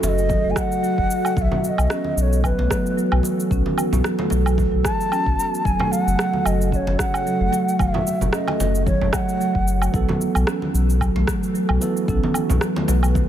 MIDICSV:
0, 0, Header, 1, 7, 480
1, 0, Start_track
1, 0, Tempo, 535714
1, 1225, Time_signature, 4, 2, 24, 8
1, 11904, End_track
2, 0, Start_track
2, 0, Title_t, "Bansuri"
2, 0, Program_c, 0, 73
2, 30, Note_on_c, 0, 76, 96
2, 73, Note_on_c, 0, 75, 104
2, 82, Note_off_c, 0, 76, 0
2, 452, Note_on_c, 0, 80, 75
2, 466, Note_off_c, 0, 75, 0
2, 513, Note_on_c, 0, 78, 113
2, 526, Note_off_c, 0, 80, 0
2, 1235, Note_off_c, 0, 78, 0
2, 1235, Note_on_c, 0, 78, 88
2, 1269, Note_on_c, 0, 76, 95
2, 1278, Note_off_c, 0, 78, 0
2, 1476, Note_off_c, 0, 76, 0
2, 1476, Note_on_c, 0, 76, 88
2, 1514, Note_on_c, 0, 75, 95
2, 1522, Note_off_c, 0, 76, 0
2, 1949, Note_off_c, 0, 75, 0
2, 1949, Note_on_c, 0, 75, 78
2, 1991, Note_on_c, 0, 73, 85
2, 2000, Note_off_c, 0, 75, 0
2, 2182, Note_off_c, 0, 73, 0
2, 2188, Note_on_c, 0, 71, 80
2, 2870, Note_off_c, 0, 71, 0
2, 4340, Note_on_c, 0, 81, 106
2, 5061, Note_on_c, 0, 80, 101
2, 5074, Note_off_c, 0, 81, 0
2, 5301, Note_on_c, 0, 78, 101
2, 5314, Note_off_c, 0, 80, 0
2, 5786, Note_on_c, 0, 75, 93
2, 5800, Note_off_c, 0, 78, 0
2, 6020, Note_off_c, 0, 75, 0
2, 6025, Note_on_c, 0, 75, 84
2, 6057, Note_on_c, 0, 73, 91
2, 6066, Note_off_c, 0, 75, 0
2, 6263, Note_on_c, 0, 78, 98
2, 6276, Note_off_c, 0, 73, 0
2, 6984, Note_on_c, 0, 76, 89
2, 6998, Note_off_c, 0, 78, 0
2, 7457, Note_off_c, 0, 76, 0
2, 7463, Note_on_c, 0, 75, 90
2, 7910, Note_off_c, 0, 75, 0
2, 7945, Note_on_c, 0, 73, 89
2, 8182, Note_on_c, 0, 78, 88
2, 8196, Note_off_c, 0, 73, 0
2, 8903, Note_off_c, 0, 78, 0
2, 11904, End_track
3, 0, Start_track
3, 0, Title_t, "Ambient pad"
3, 0, Program_c, 1, 92
3, 0, Note_on_c, 1, 49, 81
3, 0, Note_on_c, 1, 57, 74
3, 0, Note_on_c, 1, 66, 75
3, 0, Note_on_c, 1, 69, 89
3, 1187, Note_off_c, 1, 57, 0
3, 1188, Note_off_c, 1, 69, 0
3, 1189, Note_off_c, 1, 49, 0
3, 1222, Note_on_c, 1, 59, 68
3, 1224, Note_on_c, 1, 52, 79
3, 1225, Note_on_c, 1, 69, 87
3, 5028, Note_off_c, 1, 52, 0
3, 5028, Note_off_c, 1, 59, 0
3, 5028, Note_off_c, 1, 66, 0
3, 5063, Note_on_c, 1, 57, 73
3, 5063, Note_on_c, 1, 66, 72
3, 5065, Note_on_c, 1, 49, 78
3, 8868, Note_off_c, 1, 57, 0
3, 8869, Note_off_c, 1, 49, 0
3, 8869, Note_off_c, 1, 69, 0
3, 8903, Note_on_c, 1, 69, 87
3, 8906, Note_on_c, 1, 59, 72
3, 8907, Note_on_c, 1, 52, 78
3, 10805, Note_off_c, 1, 69, 0
3, 10821, Note_on_c, 1, 71, 89
3, 11904, Note_off_c, 1, 52, 0
3, 11904, Note_off_c, 1, 59, 0
3, 11904, Note_off_c, 1, 66, 0
3, 11904, Note_off_c, 1, 71, 0
3, 11904, End_track
4, 0, Start_track
4, 0, Title_t, "Tine electric piano"
4, 0, Program_c, 2, 4
4, 8885, Note_on_c, 2, 52, 77
4, 8903, Note_on_c, 2, 59, 75
4, 8922, Note_on_c, 2, 69, 87
4, 9084, Control_c, 2, 64, 127
4, 10549, Note_off_c, 2, 52, 0
4, 10558, Note_off_c, 2, 59, 0
4, 10568, Note_off_c, 2, 69, 0
4, 10576, Note_on_c, 2, 52, 80
4, 10586, Note_on_c, 2, 59, 74
4, 10594, Note_on_c, 2, 69, 85
4, 10795, Note_off_c, 2, 52, 0
4, 10800, Note_off_c, 2, 59, 0
4, 10804, Note_off_c, 2, 69, 0
4, 10806, Note_on_c, 2, 52, 74
4, 10823, Note_on_c, 2, 59, 67
4, 10841, Note_on_c, 2, 69, 79
4, 11904, Note_off_c, 2, 52, 0
4, 11904, Note_off_c, 2, 59, 0
4, 11904, Note_off_c, 2, 69, 0
4, 11904, End_track
5, 0, Start_track
5, 0, Title_t, "Marimba"
5, 0, Program_c, 3, 12
5, 260, Note_on_c, 3, 54, 73
5, 389, Note_off_c, 3, 54, 0
5, 397, Note_on_c, 3, 57, 69
5, 494, Note_off_c, 3, 57, 0
5, 502, Note_on_c, 3, 54, 96
5, 630, Note_off_c, 3, 54, 0
5, 742, Note_on_c, 3, 54, 78
5, 870, Note_off_c, 3, 54, 0
5, 1225, Note_on_c, 3, 54, 75
5, 1352, Note_off_c, 3, 54, 0
5, 1702, Note_on_c, 3, 61, 74
5, 1830, Note_off_c, 3, 61, 0
5, 2182, Note_on_c, 3, 54, 73
5, 2310, Note_off_c, 3, 54, 0
5, 2317, Note_on_c, 3, 57, 65
5, 2413, Note_off_c, 3, 57, 0
5, 2422, Note_on_c, 3, 54, 91
5, 2550, Note_off_c, 3, 54, 0
5, 2665, Note_on_c, 3, 54, 78
5, 2792, Note_off_c, 3, 54, 0
5, 3146, Note_on_c, 3, 61, 77
5, 3272, Note_off_c, 3, 61, 0
5, 3626, Note_on_c, 3, 54, 78
5, 3752, Note_off_c, 3, 54, 0
5, 3756, Note_on_c, 3, 57, 75
5, 3853, Note_off_c, 3, 57, 0
5, 3865, Note_on_c, 3, 54, 96
5, 3992, Note_off_c, 3, 54, 0
5, 4107, Note_on_c, 3, 54, 74
5, 4233, Note_off_c, 3, 54, 0
5, 4585, Note_on_c, 3, 61, 79
5, 4712, Note_off_c, 3, 61, 0
5, 5066, Note_on_c, 3, 54, 81
5, 5192, Note_off_c, 3, 54, 0
5, 5198, Note_on_c, 3, 57, 75
5, 5294, Note_off_c, 3, 57, 0
5, 5304, Note_on_c, 3, 54, 99
5, 5431, Note_off_c, 3, 54, 0
5, 5545, Note_on_c, 3, 54, 72
5, 5672, Note_off_c, 3, 54, 0
5, 6022, Note_on_c, 3, 61, 76
5, 6150, Note_off_c, 3, 61, 0
5, 6506, Note_on_c, 3, 54, 75
5, 6632, Note_off_c, 3, 54, 0
5, 6640, Note_on_c, 3, 57, 70
5, 6735, Note_off_c, 3, 57, 0
5, 6741, Note_on_c, 3, 54, 93
5, 6870, Note_off_c, 3, 54, 0
5, 6984, Note_on_c, 3, 54, 75
5, 7111, Note_off_c, 3, 54, 0
5, 7462, Note_on_c, 3, 61, 71
5, 7590, Note_off_c, 3, 61, 0
5, 7942, Note_on_c, 3, 54, 78
5, 8070, Note_off_c, 3, 54, 0
5, 8077, Note_on_c, 3, 57, 64
5, 8173, Note_off_c, 3, 57, 0
5, 8427, Note_on_c, 3, 54, 81
5, 8553, Note_off_c, 3, 54, 0
5, 8904, Note_on_c, 3, 54, 78
5, 9031, Note_off_c, 3, 54, 0
5, 9385, Note_on_c, 3, 61, 73
5, 9512, Note_off_c, 3, 61, 0
5, 9867, Note_on_c, 3, 54, 70
5, 9993, Note_off_c, 3, 54, 0
5, 9998, Note_on_c, 3, 57, 70
5, 10094, Note_off_c, 3, 57, 0
5, 10108, Note_on_c, 3, 54, 91
5, 10233, Note_off_c, 3, 54, 0
5, 10346, Note_on_c, 3, 54, 77
5, 10472, Note_off_c, 3, 54, 0
5, 10827, Note_on_c, 3, 61, 76
5, 10953, Note_off_c, 3, 61, 0
5, 11306, Note_on_c, 3, 54, 75
5, 11432, Note_off_c, 3, 54, 0
5, 11440, Note_on_c, 3, 57, 71
5, 11535, Note_off_c, 3, 57, 0
5, 11545, Note_on_c, 3, 54, 102
5, 11672, Note_off_c, 3, 54, 0
5, 11782, Note_on_c, 3, 54, 72
5, 11904, Note_off_c, 3, 54, 0
5, 11904, End_track
6, 0, Start_track
6, 0, Title_t, "Sub bass"
6, 0, Program_c, 4, 38
6, 25, Note_on_c, 4, 30, 87
6, 338, Note_off_c, 4, 30, 0
6, 397, Note_on_c, 4, 30, 88
6, 474, Note_off_c, 4, 30, 0
6, 878, Note_on_c, 4, 30, 98
6, 955, Note_off_c, 4, 30, 0
6, 1225, Note_on_c, 4, 35, 94
6, 1321, Note_off_c, 4, 35, 0
6, 1597, Note_on_c, 4, 35, 103
6, 1674, Note_off_c, 4, 35, 0
6, 1943, Note_on_c, 4, 35, 90
6, 2257, Note_off_c, 4, 35, 0
6, 2315, Note_on_c, 4, 35, 85
6, 2393, Note_off_c, 4, 35, 0
6, 2796, Note_on_c, 4, 35, 98
6, 2874, Note_off_c, 4, 35, 0
6, 3144, Note_on_c, 4, 35, 96
6, 3240, Note_off_c, 4, 35, 0
6, 3516, Note_on_c, 4, 35, 95
6, 3593, Note_off_c, 4, 35, 0
6, 3865, Note_on_c, 4, 35, 87
6, 4178, Note_off_c, 4, 35, 0
6, 4239, Note_on_c, 4, 35, 85
6, 4315, Note_off_c, 4, 35, 0
6, 4716, Note_on_c, 4, 35, 99
6, 4794, Note_off_c, 4, 35, 0
6, 5065, Note_on_c, 4, 30, 98
6, 5161, Note_off_c, 4, 30, 0
6, 5439, Note_on_c, 4, 30, 98
6, 5515, Note_off_c, 4, 30, 0
6, 5785, Note_on_c, 4, 30, 89
6, 6099, Note_off_c, 4, 30, 0
6, 6158, Note_on_c, 4, 30, 86
6, 6235, Note_off_c, 4, 30, 0
6, 6634, Note_on_c, 4, 30, 96
6, 6713, Note_off_c, 4, 30, 0
6, 6984, Note_on_c, 4, 30, 98
6, 7080, Note_off_c, 4, 30, 0
6, 7358, Note_on_c, 4, 30, 100
6, 7434, Note_off_c, 4, 30, 0
6, 7705, Note_on_c, 4, 30, 88
6, 8018, Note_off_c, 4, 30, 0
6, 8079, Note_on_c, 4, 30, 88
6, 8155, Note_off_c, 4, 30, 0
6, 8558, Note_on_c, 4, 30, 91
6, 8856, Note_off_c, 4, 30, 0
6, 8904, Note_on_c, 4, 35, 94
6, 9000, Note_off_c, 4, 35, 0
6, 9279, Note_on_c, 4, 35, 97
6, 9355, Note_off_c, 4, 35, 0
6, 9624, Note_on_c, 4, 35, 93
6, 9938, Note_off_c, 4, 35, 0
6, 9998, Note_on_c, 4, 35, 88
6, 10074, Note_off_c, 4, 35, 0
6, 10480, Note_on_c, 4, 35, 98
6, 10556, Note_off_c, 4, 35, 0
6, 10826, Note_on_c, 4, 35, 99
6, 10922, Note_off_c, 4, 35, 0
6, 11201, Note_on_c, 4, 35, 102
6, 11276, Note_off_c, 4, 35, 0
6, 11544, Note_on_c, 4, 35, 95
6, 11858, Note_off_c, 4, 35, 0
6, 11904, End_track
7, 0, Start_track
7, 0, Title_t, "Drums"
7, 30, Note_on_c, 9, 69, 78
7, 31, Note_on_c, 9, 62, 59
7, 119, Note_off_c, 9, 69, 0
7, 120, Note_off_c, 9, 62, 0
7, 164, Note_on_c, 9, 69, 43
7, 253, Note_off_c, 9, 69, 0
7, 261, Note_on_c, 9, 63, 55
7, 265, Note_on_c, 9, 36, 102
7, 269, Note_on_c, 9, 69, 33
7, 351, Note_off_c, 9, 63, 0
7, 354, Note_off_c, 9, 36, 0
7, 358, Note_off_c, 9, 69, 0
7, 501, Note_on_c, 9, 37, 69
7, 501, Note_on_c, 9, 77, 66
7, 505, Note_on_c, 9, 36, 94
7, 510, Note_on_c, 9, 69, 69
7, 591, Note_off_c, 9, 37, 0
7, 591, Note_off_c, 9, 77, 0
7, 595, Note_off_c, 9, 36, 0
7, 599, Note_off_c, 9, 69, 0
7, 643, Note_on_c, 9, 69, 43
7, 733, Note_off_c, 9, 69, 0
7, 751, Note_on_c, 9, 69, 33
7, 841, Note_off_c, 9, 69, 0
7, 879, Note_on_c, 9, 36, 58
7, 968, Note_off_c, 9, 36, 0
7, 991, Note_on_c, 9, 69, 76
7, 1080, Note_off_c, 9, 69, 0
7, 1118, Note_on_c, 9, 77, 74
7, 1127, Note_on_c, 9, 69, 42
7, 1208, Note_off_c, 9, 77, 0
7, 1216, Note_off_c, 9, 69, 0
7, 1225, Note_on_c, 9, 36, 114
7, 1232, Note_on_c, 9, 69, 31
7, 1315, Note_off_c, 9, 36, 0
7, 1321, Note_off_c, 9, 69, 0
7, 1357, Note_on_c, 9, 64, 73
7, 1360, Note_on_c, 9, 63, 65
7, 1447, Note_off_c, 9, 64, 0
7, 1450, Note_off_c, 9, 63, 0
7, 1471, Note_on_c, 9, 69, 69
7, 1561, Note_off_c, 9, 69, 0
7, 1597, Note_on_c, 9, 77, 72
7, 1606, Note_on_c, 9, 69, 41
7, 1687, Note_off_c, 9, 77, 0
7, 1695, Note_off_c, 9, 69, 0
7, 1703, Note_on_c, 9, 37, 74
7, 1712, Note_on_c, 9, 69, 31
7, 1793, Note_off_c, 9, 37, 0
7, 1801, Note_off_c, 9, 69, 0
7, 1832, Note_on_c, 9, 63, 54
7, 1922, Note_off_c, 9, 63, 0
7, 1952, Note_on_c, 9, 69, 76
7, 2042, Note_off_c, 9, 69, 0
7, 2086, Note_on_c, 9, 69, 40
7, 2176, Note_off_c, 9, 69, 0
7, 2185, Note_on_c, 9, 36, 59
7, 2185, Note_on_c, 9, 77, 73
7, 2193, Note_on_c, 9, 69, 34
7, 2274, Note_off_c, 9, 36, 0
7, 2274, Note_off_c, 9, 77, 0
7, 2283, Note_off_c, 9, 69, 0
7, 2318, Note_on_c, 9, 62, 48
7, 2408, Note_off_c, 9, 62, 0
7, 2424, Note_on_c, 9, 36, 94
7, 2424, Note_on_c, 9, 37, 64
7, 2433, Note_on_c, 9, 69, 67
7, 2513, Note_off_c, 9, 36, 0
7, 2514, Note_off_c, 9, 37, 0
7, 2523, Note_off_c, 9, 69, 0
7, 2565, Note_on_c, 9, 69, 43
7, 2654, Note_off_c, 9, 69, 0
7, 2671, Note_on_c, 9, 69, 32
7, 2761, Note_off_c, 9, 69, 0
7, 2794, Note_on_c, 9, 77, 80
7, 2884, Note_off_c, 9, 77, 0
7, 2895, Note_on_c, 9, 62, 34
7, 2910, Note_on_c, 9, 69, 73
7, 2985, Note_off_c, 9, 62, 0
7, 2999, Note_off_c, 9, 69, 0
7, 3045, Note_on_c, 9, 69, 43
7, 3135, Note_off_c, 9, 69, 0
7, 3144, Note_on_c, 9, 36, 101
7, 3152, Note_on_c, 9, 69, 30
7, 3233, Note_off_c, 9, 36, 0
7, 3242, Note_off_c, 9, 69, 0
7, 3277, Note_on_c, 9, 63, 64
7, 3367, Note_off_c, 9, 63, 0
7, 3383, Note_on_c, 9, 77, 76
7, 3392, Note_on_c, 9, 69, 72
7, 3473, Note_off_c, 9, 77, 0
7, 3482, Note_off_c, 9, 69, 0
7, 3518, Note_on_c, 9, 64, 76
7, 3525, Note_on_c, 9, 69, 38
7, 3608, Note_off_c, 9, 64, 0
7, 3614, Note_off_c, 9, 69, 0
7, 3623, Note_on_c, 9, 37, 70
7, 3631, Note_on_c, 9, 69, 31
7, 3712, Note_off_c, 9, 37, 0
7, 3721, Note_off_c, 9, 69, 0
7, 3751, Note_on_c, 9, 62, 56
7, 3758, Note_on_c, 9, 63, 62
7, 3841, Note_off_c, 9, 62, 0
7, 3848, Note_off_c, 9, 63, 0
7, 3854, Note_on_c, 9, 62, 53
7, 3872, Note_on_c, 9, 69, 69
7, 3943, Note_off_c, 9, 62, 0
7, 3962, Note_off_c, 9, 69, 0
7, 3996, Note_on_c, 9, 77, 75
7, 4005, Note_on_c, 9, 69, 38
7, 4086, Note_off_c, 9, 77, 0
7, 4094, Note_off_c, 9, 69, 0
7, 4103, Note_on_c, 9, 36, 92
7, 4105, Note_on_c, 9, 63, 57
7, 4113, Note_on_c, 9, 69, 29
7, 4193, Note_off_c, 9, 36, 0
7, 4195, Note_off_c, 9, 63, 0
7, 4202, Note_off_c, 9, 69, 0
7, 4342, Note_on_c, 9, 37, 67
7, 4343, Note_on_c, 9, 36, 90
7, 4350, Note_on_c, 9, 69, 69
7, 4431, Note_off_c, 9, 37, 0
7, 4433, Note_off_c, 9, 36, 0
7, 4440, Note_off_c, 9, 69, 0
7, 4485, Note_on_c, 9, 69, 42
7, 4575, Note_off_c, 9, 69, 0
7, 4586, Note_on_c, 9, 77, 76
7, 4595, Note_on_c, 9, 69, 31
7, 4676, Note_off_c, 9, 77, 0
7, 4684, Note_off_c, 9, 69, 0
7, 4717, Note_on_c, 9, 36, 54
7, 4806, Note_off_c, 9, 36, 0
7, 4835, Note_on_c, 9, 69, 73
7, 4924, Note_off_c, 9, 69, 0
7, 4968, Note_on_c, 9, 69, 41
7, 5057, Note_off_c, 9, 69, 0
7, 5064, Note_on_c, 9, 36, 104
7, 5076, Note_on_c, 9, 69, 30
7, 5154, Note_off_c, 9, 36, 0
7, 5166, Note_off_c, 9, 69, 0
7, 5192, Note_on_c, 9, 63, 68
7, 5193, Note_on_c, 9, 64, 76
7, 5200, Note_on_c, 9, 77, 79
7, 5281, Note_off_c, 9, 63, 0
7, 5283, Note_off_c, 9, 64, 0
7, 5289, Note_off_c, 9, 77, 0
7, 5313, Note_on_c, 9, 69, 68
7, 5403, Note_off_c, 9, 69, 0
7, 5448, Note_on_c, 9, 69, 39
7, 5537, Note_off_c, 9, 69, 0
7, 5545, Note_on_c, 9, 37, 72
7, 5554, Note_on_c, 9, 69, 29
7, 5635, Note_off_c, 9, 37, 0
7, 5644, Note_off_c, 9, 69, 0
7, 5676, Note_on_c, 9, 63, 54
7, 5765, Note_off_c, 9, 63, 0
7, 5784, Note_on_c, 9, 77, 78
7, 5792, Note_on_c, 9, 69, 69
7, 5873, Note_off_c, 9, 77, 0
7, 5882, Note_off_c, 9, 69, 0
7, 5926, Note_on_c, 9, 69, 36
7, 6016, Note_off_c, 9, 69, 0
7, 6024, Note_on_c, 9, 36, 54
7, 6034, Note_on_c, 9, 69, 30
7, 6114, Note_off_c, 9, 36, 0
7, 6124, Note_off_c, 9, 69, 0
7, 6157, Note_on_c, 9, 62, 52
7, 6247, Note_off_c, 9, 62, 0
7, 6263, Note_on_c, 9, 37, 68
7, 6264, Note_on_c, 9, 36, 94
7, 6272, Note_on_c, 9, 69, 61
7, 6353, Note_off_c, 9, 37, 0
7, 6354, Note_off_c, 9, 36, 0
7, 6362, Note_off_c, 9, 69, 0
7, 6398, Note_on_c, 9, 77, 83
7, 6406, Note_on_c, 9, 69, 40
7, 6487, Note_off_c, 9, 77, 0
7, 6496, Note_off_c, 9, 69, 0
7, 6513, Note_on_c, 9, 69, 30
7, 6602, Note_off_c, 9, 69, 0
7, 6744, Note_on_c, 9, 62, 33
7, 6752, Note_on_c, 9, 69, 69
7, 6833, Note_off_c, 9, 62, 0
7, 6842, Note_off_c, 9, 69, 0
7, 6886, Note_on_c, 9, 69, 38
7, 6976, Note_off_c, 9, 69, 0
7, 6983, Note_on_c, 9, 36, 109
7, 6983, Note_on_c, 9, 63, 36
7, 6984, Note_on_c, 9, 77, 73
7, 6993, Note_on_c, 9, 69, 31
7, 7073, Note_off_c, 9, 36, 0
7, 7073, Note_off_c, 9, 63, 0
7, 7074, Note_off_c, 9, 77, 0
7, 7082, Note_off_c, 9, 69, 0
7, 7115, Note_on_c, 9, 63, 67
7, 7121, Note_on_c, 9, 64, 76
7, 7205, Note_off_c, 9, 63, 0
7, 7210, Note_off_c, 9, 64, 0
7, 7231, Note_on_c, 9, 69, 65
7, 7321, Note_off_c, 9, 69, 0
7, 7358, Note_on_c, 9, 64, 68
7, 7363, Note_on_c, 9, 69, 42
7, 7447, Note_off_c, 9, 64, 0
7, 7452, Note_off_c, 9, 69, 0
7, 7460, Note_on_c, 9, 37, 76
7, 7469, Note_on_c, 9, 69, 32
7, 7550, Note_off_c, 9, 37, 0
7, 7558, Note_off_c, 9, 69, 0
7, 7594, Note_on_c, 9, 63, 54
7, 7594, Note_on_c, 9, 77, 78
7, 7600, Note_on_c, 9, 62, 52
7, 7683, Note_off_c, 9, 63, 0
7, 7684, Note_off_c, 9, 77, 0
7, 7689, Note_off_c, 9, 62, 0
7, 7708, Note_on_c, 9, 62, 62
7, 7708, Note_on_c, 9, 69, 75
7, 7797, Note_off_c, 9, 62, 0
7, 7798, Note_off_c, 9, 69, 0
7, 7840, Note_on_c, 9, 69, 40
7, 7929, Note_off_c, 9, 69, 0
7, 7943, Note_on_c, 9, 36, 94
7, 7945, Note_on_c, 9, 63, 60
7, 7948, Note_on_c, 9, 69, 32
7, 8033, Note_off_c, 9, 36, 0
7, 8034, Note_off_c, 9, 63, 0
7, 8037, Note_off_c, 9, 69, 0
7, 8077, Note_on_c, 9, 64, 76
7, 8166, Note_off_c, 9, 64, 0
7, 8178, Note_on_c, 9, 37, 66
7, 8178, Note_on_c, 9, 77, 75
7, 8184, Note_on_c, 9, 36, 84
7, 8186, Note_on_c, 9, 69, 68
7, 8267, Note_off_c, 9, 37, 0
7, 8267, Note_off_c, 9, 77, 0
7, 8273, Note_off_c, 9, 36, 0
7, 8276, Note_off_c, 9, 69, 0
7, 8321, Note_on_c, 9, 69, 40
7, 8411, Note_off_c, 9, 69, 0
7, 8430, Note_on_c, 9, 69, 30
7, 8520, Note_off_c, 9, 69, 0
7, 8557, Note_on_c, 9, 36, 57
7, 8646, Note_off_c, 9, 36, 0
7, 8670, Note_on_c, 9, 69, 70
7, 8759, Note_off_c, 9, 69, 0
7, 8795, Note_on_c, 9, 77, 77
7, 8804, Note_on_c, 9, 69, 45
7, 8885, Note_off_c, 9, 77, 0
7, 8894, Note_off_c, 9, 69, 0
7, 8904, Note_on_c, 9, 36, 113
7, 8910, Note_on_c, 9, 69, 32
7, 8993, Note_off_c, 9, 36, 0
7, 9000, Note_off_c, 9, 69, 0
7, 9036, Note_on_c, 9, 64, 74
7, 9041, Note_on_c, 9, 63, 73
7, 9126, Note_off_c, 9, 64, 0
7, 9131, Note_off_c, 9, 63, 0
7, 9150, Note_on_c, 9, 69, 70
7, 9240, Note_off_c, 9, 69, 0
7, 9274, Note_on_c, 9, 77, 71
7, 9283, Note_on_c, 9, 69, 41
7, 9364, Note_off_c, 9, 77, 0
7, 9373, Note_off_c, 9, 69, 0
7, 9381, Note_on_c, 9, 37, 82
7, 9390, Note_on_c, 9, 69, 31
7, 9471, Note_off_c, 9, 37, 0
7, 9480, Note_off_c, 9, 69, 0
7, 9517, Note_on_c, 9, 63, 55
7, 9607, Note_off_c, 9, 63, 0
7, 9631, Note_on_c, 9, 69, 70
7, 9720, Note_off_c, 9, 69, 0
7, 9764, Note_on_c, 9, 69, 39
7, 9854, Note_off_c, 9, 69, 0
7, 9865, Note_on_c, 9, 36, 59
7, 9865, Note_on_c, 9, 77, 71
7, 9873, Note_on_c, 9, 69, 34
7, 9954, Note_off_c, 9, 36, 0
7, 9954, Note_off_c, 9, 77, 0
7, 9963, Note_off_c, 9, 69, 0
7, 9998, Note_on_c, 9, 62, 52
7, 10088, Note_off_c, 9, 62, 0
7, 10102, Note_on_c, 9, 37, 72
7, 10105, Note_on_c, 9, 36, 93
7, 10110, Note_on_c, 9, 69, 72
7, 10191, Note_off_c, 9, 37, 0
7, 10194, Note_off_c, 9, 36, 0
7, 10200, Note_off_c, 9, 69, 0
7, 10244, Note_on_c, 9, 69, 41
7, 10333, Note_off_c, 9, 69, 0
7, 10350, Note_on_c, 9, 69, 31
7, 10440, Note_off_c, 9, 69, 0
7, 10473, Note_on_c, 9, 77, 76
7, 10563, Note_off_c, 9, 77, 0
7, 10586, Note_on_c, 9, 62, 38
7, 10588, Note_on_c, 9, 69, 78
7, 10675, Note_off_c, 9, 62, 0
7, 10677, Note_off_c, 9, 69, 0
7, 10723, Note_on_c, 9, 69, 46
7, 10813, Note_off_c, 9, 69, 0
7, 10825, Note_on_c, 9, 36, 121
7, 10830, Note_on_c, 9, 69, 32
7, 10915, Note_off_c, 9, 36, 0
7, 10919, Note_off_c, 9, 69, 0
7, 10962, Note_on_c, 9, 63, 74
7, 11052, Note_off_c, 9, 63, 0
7, 11059, Note_on_c, 9, 77, 67
7, 11068, Note_on_c, 9, 69, 78
7, 11149, Note_off_c, 9, 77, 0
7, 11157, Note_off_c, 9, 69, 0
7, 11196, Note_on_c, 9, 64, 86
7, 11202, Note_on_c, 9, 69, 45
7, 11285, Note_off_c, 9, 64, 0
7, 11292, Note_off_c, 9, 69, 0
7, 11299, Note_on_c, 9, 37, 77
7, 11308, Note_on_c, 9, 69, 36
7, 11389, Note_off_c, 9, 37, 0
7, 11398, Note_off_c, 9, 69, 0
7, 11436, Note_on_c, 9, 62, 63
7, 11446, Note_on_c, 9, 63, 65
7, 11526, Note_off_c, 9, 62, 0
7, 11536, Note_off_c, 9, 63, 0
7, 11541, Note_on_c, 9, 62, 59
7, 11548, Note_on_c, 9, 69, 76
7, 11630, Note_off_c, 9, 62, 0
7, 11637, Note_off_c, 9, 69, 0
7, 11673, Note_on_c, 9, 77, 65
7, 11682, Note_on_c, 9, 69, 45
7, 11763, Note_off_c, 9, 77, 0
7, 11771, Note_off_c, 9, 69, 0
7, 11785, Note_on_c, 9, 36, 102
7, 11788, Note_on_c, 9, 63, 58
7, 11788, Note_on_c, 9, 69, 35
7, 11874, Note_off_c, 9, 36, 0
7, 11877, Note_off_c, 9, 63, 0
7, 11877, Note_off_c, 9, 69, 0
7, 11904, End_track
0, 0, End_of_file